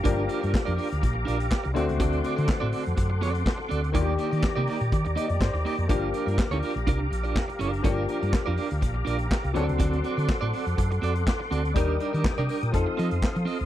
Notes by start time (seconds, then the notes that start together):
Already playing: F3 A#3 D4 G4 F5 A#5 D6
0.03 G1 F3 A#3 D4 F4 G4 A#4 D5, kick, closed hi-hat
0.28 D4 F4 A#4 D5, closed hi-hat
0.41 G2 D4 F4 A#4 D5, closed hi-hat
0.53 muted clean electric guitar stroke, kick, snare, clap
0.65 F2 D4 F4 A#4 D5, closed hi-hat
0.77 D4 F4 A#4 D5, open hi-hat
0.92 D2, closed hi-hat
1.02 A#1, muted clean electric guitar stroke, kick, closed hi-hat
1.14 muted clean electric guitar stroke
1.25 A#1 D4 F4 A#4 D5, closed hi-hat
1.39 muted clean electric guitar stroke, closed hi-hat
1.51 kick, snare, clap
1.64 C2, muted clean electric guitar stroke, closed hi-hat
1.74 D2 D3 A3 C4 F#4 A4 D5 F#5 C6, closed hi-hat
1.88 C#2, muted clean electric guitar stroke, closed hi-hat
2.00 D2 C4 F#4 A4 D5, kick, closed hi-hat
2.13 closed hi-hat
2.24 C4 F#4 A4 D5, closed hi-hat
2.36 D3 C4 F#4 A4 D5, closed hi-hat
2.48 muted clean electric guitar stroke, kick, snare, clap
2.60 A2 C4 F#4 A4 D5
2.72 C4 F#4 A4 D5, open hi-hat
2.85 F2, muted clean electric guitar stroke, closed hi-hat
2.97 F#2, muted clean electric guitar stroke, kick, closed hi-hat
3.10 muted clean electric guitar stroke
3.21 F2 C4 F#4 A4 D5, closed hi-hat
3.34 muted clean electric guitar stroke, closed hi-hat
3.46 kick, snare, clap
3.58 muted clean electric guitar stroke, snare
3.69 D2 C4 F#4 A4 D5, closed hi-hat
3.82 muted clean electric guitar stroke, closed hi-hat
3.93 D#2 D#3 A#3 D4 D#4 F4 G4 D5 A#5 D6, kick, closed hi-hat
4.02 G4
4.18 A#3 D#4 G4 D5, closed hi-hat
4.31 D#3 A#3 D#4 G4 D5, closed hi-hat
4.43 muted clean electric guitar stroke, kick, snare, clap
4.56 C3 A#3 D#4 G4 D5
4.67 A#3 D#4 G4 D5, open hi-hat
4.81 A#2, closed hi-hat
4.92 D#3, muted clean electric guitar stroke, kick, closed hi-hat
5.05 D#2, muted clean electric guitar stroke, closed hi-hat
5.16 A#3 D#4 G4 D5 D#5, closed hi-hat
5.28 F2 D5, closed hi-hat
5.40 G2 C5, kick, snare, clap
5.54 D#2, muted clean electric guitar stroke, snare, closed hi-hat
5.65 A#3 D#4 G4 D5, open hi-hat
5.78 F2, closed hi-hat
5.88 G1 F3 A#3 D4 F4 G4 A#4 D5 F5 A#5, kick, closed hi-hat
6.13 D4 F4 A#4 D5, closed hi-hat
6.26 G2 D4 F4 A#4 D5, closed hi-hat
6.38 muted clean electric guitar stroke, kick, snare, clap
6.51 D2 D4 F4 A#4 D5, closed hi-hat
6.63 D4 F4 A#4 D5, open hi-hat
6.75 A#1, muted clean electric guitar stroke, closed hi-hat
6.87 C2 D4 F4 A#4 D5, kick, closed hi-hat
7.00 muted clean electric guitar stroke
7.10 A#1, muted clean electric guitar stroke, closed hi-hat
7.24 D4 F4 A#4 D5, closed hi-hat
7.36 kick, snare, clap
7.48 muted clean electric guitar stroke, closed hi-hat
7.59 F#1 D4 F4 A#4 D5, closed hi-hat
7.72 muted clean electric guitar stroke, closed hi-hat
7.83 G1 F3 A#3 D4 F4 G4 A#4 D5, kick, closed hi-hat
8.08 D4 F4 A#4 D5, closed hi-hat
8.21 G2 D4 F4 A#4 D5, closed hi-hat
8.32 muted clean electric guitar stroke, kick, snare, clap
8.46 F2 D4 F4 A#4 D5
8.57 D4 F4 A#4 D5, open hi-hat
8.71 D2, closed hi-hat
8.81 A#1, muted clean electric guitar stroke, kick, closed hi-hat
8.94 muted clean electric guitar stroke
9.05 A#1 D4 F4 A#4 D5, closed hi-hat
9.19 closed hi-hat
9.31 kick, snare, clap
9.43 C2, muted clean electric guitar stroke, closed hi-hat
9.54 D2 F#3 C4 D4 F#4 A4 D5 F#5 C6, closed hi-hat
9.69 C#2, muted clean electric guitar stroke, closed hi-hat
9.78 D2 C4 F#4 A4 D5, kick, closed hi-hat
9.93 closed hi-hat
10.04 C4 F#4 A4 D5, closed hi-hat
10.17 D3 C4 F#4 A4 D5, closed hi-hat
10.29 muted clean electric guitar stroke, kick, snare, clap
10.41 A2 C4 F#4 A4 D5
10.53 C4 F#4 A4 D5, open hi-hat
10.67 F2, closed hi-hat
10.77 F#2, muted clean electric guitar stroke, kick, closed hi-hat
10.91 muted clean electric guitar stroke, closed hi-hat
11.02 F2 C4 F#4 A4 D5, closed hi-hat
11.15 muted clean electric guitar stroke, closed hi-hat
11.27 kick, snare, clap
11.40 muted clean electric guitar stroke, snare
11.51 D2 C4 F#4 A4 D5, closed hi-hat
11.65 closed hi-hat
11.74 D#2 G3 D4 D#4 G4 A#4 D5 G5 D#6, kick, closed hi-hat
12.00 D4 G4 A#4 D5, closed hi-hat
12.13 D#3 D4 G4 A#4 D5, closed hi-hat
12.24 muted clean electric guitar stroke, kick, snare, clap
12.38 C3 D4 G4 A#4 D5, closed hi-hat
12.49 D4 G4 A#4 D5, open hi-hat
12.63 A#2, closed hi-hat
12.71 F2 F3 C4 D#4 A4 F5 C6, muted clean electric guitar stroke, kick, closed hi-hat
12.86 muted clean electric guitar stroke
12.97 F3 C4 F4 A4 D#5, closed hi-hat
13.11 F2, closed hi-hat
13.22 kick, snare, clap
13.35 F3, muted clean electric guitar stroke, closed hi-hat
13.45 C4 F4 A4 D#5, open hi-hat
13.59 C#2, muted clean electric guitar stroke, closed hi-hat